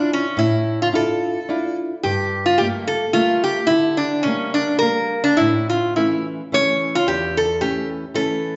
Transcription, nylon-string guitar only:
0.00 0.27 D4 medium
0.00 0.27 E4 medium
0.00 0.27 F4 medium
0.37 0.92 A2 medium
0.93 1.38 D4 medium
0.93 1.38 E4 soft
0.93 1.38 F4 medium
1.49 1.93 D4 medium
1.49 1.93 E4 medium
1.49 1.94 F4 medium
2.04 2.58 G2 medium
2.61 3.04 G3 soft
2.61 3.05 A3 soft
2.61 3.05 A#3 medium
3.14 3.59 G3 medium
3.14 3.59 A3 medium
3.14 3.59 A#3 medium
3.70 4.24 D3 medium
4.25 4.71 G3 soft
4.25 4.71 A3 soft
4.25 4.71 A#3 medium
4.81 5.27 G3 medium
4.81 5.28 A#3 medium
5.40 5.94 A2 medium
5.96 6.41 E3 soft
5.96 6.41 A3 soft
5.96 6.41 C#4 soft
6.52 6.96 E3 medium
6.52 6.96 A3 soft
6.52 6.96 C#4 medium
7.07 7.59 E2 medium
7.61 8.04 E3 soft
7.61 8.04 A3 soft
7.61 8.04 C#4 medium
8.14 8.56 E3 medium
8.14 8.56 A3 soft
8.14 8.56 C#4 medium

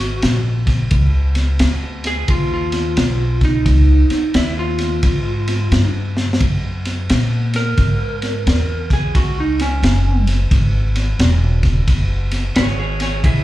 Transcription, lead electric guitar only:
0.00 0.42 F#4 loud
2.07 2.28 G#4 loud
2.30 2.51 F4 medium
2.54 3.41 F4 medium
3.45 4.32 D#4 medium
4.36 4.57 E4 medium
4.59 5.91 F4 medium
7.56 8.88 A#4 loud
8.93 9.14 G#4 medium
9.16 9.37 F#4 loud
9.40 9.61 D#4 medium
9.62 10.27 C#4 medium
12.56 12.78 G#4 medium
12.56 12.78 C#5 medium
12.79 13.00 G#4 medium
12.79 13.01 C#5 medium
13.02 13.22 G#4 medium
13.02 13.23 C#5 medium
13.25 13.44 E4 medium
13.25 13.44 G#4 medium

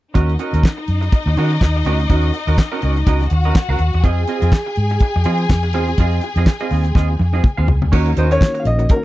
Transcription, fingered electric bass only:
0.15 0.35 D#2 loud
0.53 0.62 D#2 medium
0.88 1.08 F#2 medium
1.26 1.35 D#2 loud
1.36 1.57 D#3 medium
1.61 1.81 D#2 medium
1.85 2.05 D2 medium
2.10 2.30 D#2 medium
2.47 2.56 D#2 medium
2.83 3.03 C#2 medium
3.07 3.27 C#2 medium
3.31 3.51 D#2 medium
3.69 3.78 C#2 medium
3.79 3.91 D#2 medium
3.94 4.04 E2 medium
4.04 4.24 F2 medium
4.42 4.51 F2 medium
4.77 4.97 G#2 medium
5.16 5.24 F2 loud
5.25 5.45 F3 loud
5.50 5.73 F2 medium
5.73 5.94 E2 medium
5.98 6.18 F2 loud
6.36 6.45 F2 medium
6.71 6.91 D#2 medium
6.96 7.16 D#2 medium
7.20 7.40 F2 medium
7.58 7.67 D#2 medium
7.68 7.82 C#2 medium
7.82 7.91 D2 medium
7.93 8.13 D#2 medium
8.17 8.37 D#2 medium
8.65 8.85 A#1 medium

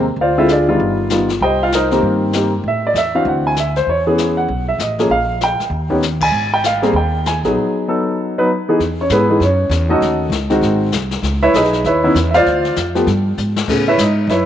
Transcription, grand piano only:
0.21 0.37 F4 medium
0.21 0.38 C5 medium
0.21 0.38 D5 medium
0.21 0.38 F5 medium
0.38 0.48 D3 medium
0.38 0.48 G#3 medium
0.38 0.48 C4 medium
0.38 0.49 E4 medium
0.38 0.48 F4 medium
0.38 0.49 E5 medium
0.51 0.79 D4 medium
0.51 0.67 F4 medium
0.51 0.79 G#4 medium
0.51 0.78 D5 medium
0.68 1.08 D#3 medium
0.68 1.08 G3 medium
0.68 1.08 B3 medium
0.68 1.08 F4 medium
1.10 1.27 D#3 medium
1.10 1.27 G3 medium
1.10 1.28 B3 medium
1.10 1.28 F4 medium
1.42 1.60 G4 medium
1.42 1.60 C5 medium
1.42 1.60 D#5 medium
1.42 1.60 G5 medium
1.63 1.73 F4 medium
1.63 1.73 F5 medium
1.75 2.02 D#4 medium
1.75 2.02 A#4 medium
1.75 2.02 C5 medium
1.75 2.02 D#5 medium
1.92 2.31 D#3 medium
1.92 2.31 A#3 medium
1.92 2.31 C4 medium
1.92 2.32 G4 medium
2.34 2.51 D#3 medium
2.34 2.51 A#3 medium
2.34 2.51 C4 medium
2.34 2.51 G4 medium
2.68 2.84 E5 medium
2.87 2.96 D5 medium
2.93 2.95 D#5 medium
2.98 3.14 E5 medium
3.15 3.54 E3 medium
3.15 3.54 C4 medium
3.15 3.55 D4 medium
3.15 3.54 F#4 medium
3.15 3.26 F5 medium
3.28 3.45 F#5 medium
3.47 3.57 G#5 medium
3.60 3.76 E5 medium
3.77 3.87 C5 medium
3.89 4.00 C#5 medium
4.07 4.46 E3 medium
4.07 4.46 B3 medium
4.07 4.46 C#4 medium
4.07 4.46 G#4 medium
4.37 4.65 F#5 medium
4.68 4.79 E5 medium
4.80 5.08 D#5 medium
4.99 5.09 F3 medium
4.99 5.09 A#3 medium
4.99 5.09 C#4 medium
4.99 5.09 G#4 medium
5.11 5.39 F5 medium
5.44 5.60 G5 medium
5.90 6.01 D#3 medium
5.90 6.01 B3 medium
5.90 6.01 C#4 medium
5.90 6.01 G4 medium
6.23 6.50 G#5 loud
6.54 6.64 G5 medium
6.66 6.93 F5 medium
6.82 6.93 G3 medium
6.82 6.93 A#3 medium
6.82 6.93 C4 medium
6.82 6.93 G#4 medium
6.96 7.24 G5 medium
7.27 7.38 G#5 medium
7.45 7.85 F#3 medium
7.45 7.85 B3 medium
7.45 7.85 D#4 medium
7.45 7.85 G#4 medium
7.88 8.33 F#3 medium
7.88 8.33 B3 medium
7.88 8.33 D#4 medium
7.88 8.34 A4 medium
8.38 8.48 F#3 medium
8.38 8.48 B3 medium
8.38 8.48 D#4 medium
8.38 8.48 B4 medium
8.68 8.78 E3 medium
8.68 8.79 B3 medium
8.68 8.79 D#4 medium
8.68 8.79 G#4 medium
9.01 9.11 C#4 medium
9.01 9.11 C#5 medium
9.12 9.28 B3 medium
9.12 9.39 E4 medium
9.12 9.28 G#4 medium
9.12 9.39 B4 medium
9.29 9.39 E3 medium
9.29 9.40 B3 medium
9.29 9.39 D#4 medium
9.29 9.39 G#4 medium
9.43 9.88 C#4 medium
9.43 9.88 C#5 medium
9.89 10.29 D#3 medium
9.89 10.30 A3 medium
9.89 10.29 C#4 medium
9.89 10.30 D#4 medium
9.89 10.30 F#4 medium
9.89 10.30 A4 medium
9.89 10.29 D#5 medium
10.50 10.90 D#3 medium
10.50 10.91 G#3 medium
10.50 10.91 C4 medium
10.50 10.91 F#4 medium
11.43 11.54 E4 medium
11.43 11.54 B4 medium
11.43 11.54 C#5 medium
11.43 11.54 E5 loud
11.55 11.83 D#4 medium
11.55 11.83 G#4 medium
11.55 11.83 B4 medium
11.55 11.83 D#5 medium
11.86 12.03 E4 medium
11.86 12.32 B4 medium
11.86 12.32 C#5 medium
11.86 12.29 E5 medium
12.04 12.14 D#3 medium
12.04 12.14 B3 medium
12.04 12.14 C#4 medium
12.04 12.15 E4 medium
12.31 12.32 E5 medium
12.31 12.74 F5 loud
12.35 12.74 F4 medium
12.35 12.74 C5 medium
12.35 12.74 D5 loud
12.95 13.06 F3 medium
12.95 13.06 A3 medium
12.95 13.06 B3 medium
12.95 13.06 G4 medium
13.69 13.85 C#3 medium
13.69 13.85 A3 medium
13.69 13.86 B3 soft
13.69 13.86 G#4 medium
13.88 13.99 E4 medium
13.88 13.99 B4 medium
13.88 13.99 C#5 medium
13.88 13.99 E5 medium
14.00 14.28 D#4 medium
14.00 14.24 D#5 medium
14.26 14.28 D#5 medium
14.30 14.46 E4 medium
14.30 14.46 B4 medium
14.30 14.46 C#5 medium
14.30 14.46 E5 medium

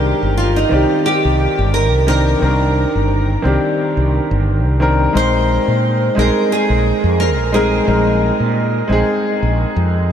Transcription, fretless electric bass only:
0.00 0.12 C2 medium
0.23 0.63 G1 medium
0.72 0.84 C2 medium
1.25 1.46 C2 medium
1.59 1.93 G1 medium
1.93 2.34 C2 medium
2.42 2.85 C2 medium
2.95 3.36 G1 medium
3.45 3.57 C2 medium
3.97 4.18 C2 medium
4.31 4.65 G1 medium
4.65 5.06 C2 medium
5.15 5.58 A#1 medium
5.68 6.09 A#2 medium
6.17 6.30 A#1 medium
6.70 6.91 A#1 medium
7.04 7.38 F2 loud
7.38 7.79 A#1 medium
7.88 8.30 A#1 medium
8.40 8.81 A#2 medium
8.90 9.02 A#1 medium
9.43 9.64 A#1 medium
9.76 10.12 F2 medium

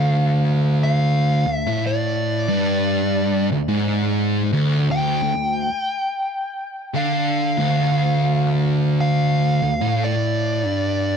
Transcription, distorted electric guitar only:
0.00 1.45 D2 medium
1.47 1.66 D2 medium
1.67 2.48 A2 loud
2.49 3.49 G2 loud
3.52 3.68 D2 medium
3.69 4.51 G#2 loud
4.53 4.89 D2 loud
4.90 5.21 D2 loud
5.23 5.66 D2 medium
6.94 7.56 D3 loud
7.58 9.60 D2 medium
9.62 9.81 D2 medium
9.81 10.65 A2 medium
10.65 11.17 G2 medium

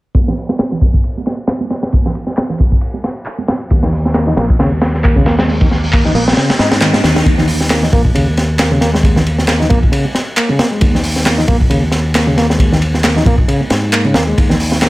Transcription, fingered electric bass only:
3.71 4.34 D#2 loud
4.37 4.55 A#1 medium
4.59 6.11 D#2 medium
6.14 6.32 A#1 medium
6.59 7.00 G#2 medium
7.03 7.21 D#2 medium
7.26 7.89 D#2 loud
7.92 8.10 A#1 medium
8.15 9.67 D#2 medium
9.70 9.88 A#1 medium
10.82 11.45 D#2 medium
11.48 11.66 A#1 medium
11.70 13.22 D#2 medium
13.26 13.44 A#1 medium
13.70 14.11 G#2 medium
14.15 14.33 D#2 medium
14.38 14.89 D#2 medium

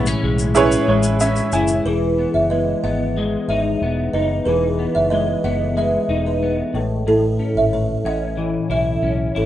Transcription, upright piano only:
0.00 0.35 E4 medium
0.00 0.36 G#4 medium
0.00 0.36 B4 medium
0.00 0.37 C#5 medium
0.55 1.66 E4 medium
0.55 1.66 G#4 medium
0.55 1.66 B4 medium
0.55 0.88 C#5 medium
0.89 1.19 C#5 medium
1.21 1.51 E5 medium
1.53 1.83 G#5 medium

